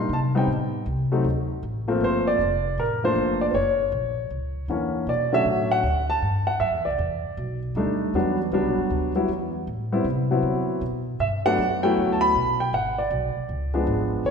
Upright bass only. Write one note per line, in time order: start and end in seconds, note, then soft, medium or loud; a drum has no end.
0.09 0.47 C3 medium
0.47 0.85 A2 medium
0.86 1.23 C2 medium
1.24 1.61 D2 medium
1.63 2.00 A1 medium
2.00 2.38 G1 medium
2.39 2.76 F1 medium
2.78 3.15 A1 medium
3.15 3.53 G1 medium
3.54 3.91 F#1 medium
3.92 4.29 A#1 medium
4.30 4.68 C#2 medium
4.68 5.06 E2 medium
5.07 5.44 B2 medium
5.45 5.83 A2 medium
5.83 6.21 D2 medium
6.22 6.59 G2 medium
6.60 6.73 F#2 medium
6.73 6.85 E2 medium
6.86 6.98 C2 medium
6.98 7.22 E2 medium
7.23 muted upright bass stroke soft
7.37 7.74 B1 medium
7.75 8.12 D2 medium
8.14 8.51 E2 medium
8.52 8.64 C#2 medium
8.64 8.77 B1 medium
8.78 8.90 G1 medium
8.90 9.28 D2 medium
9.28 9.66 E2 medium
9.67 10.04 A2 medium
10.04 10.42 C3 medium
10.43 10.80 D3 medium
10.81 11.19 B2 medium
11.19 11.57 G2 medium
11.58 11.95 F#2 medium
11.97 12.34 D2 medium
12.35 12.72 B1 medium
12.73 13.10 G#1 medium
13.10 13.34 B1 medium
13.36 muted upright bass stroke soft
13.49 13.86 C#2 medium
13.87 14.24 G#1 medium
14.25 14.31 F#1 medium